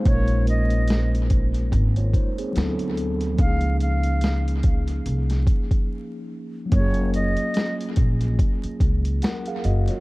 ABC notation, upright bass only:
X:1
M:4/4
L:1/16
Q:"Swing 16ths" 1/4=72
K:Gblyd
V:1 name="Upright bass" clef=bass
B,,,8 A,,,2 z2 =D,,4 | D,,8 C,,2 z6 | G,,,3 z3 B,,,2 z2 D,,2 z2 G,,, z |]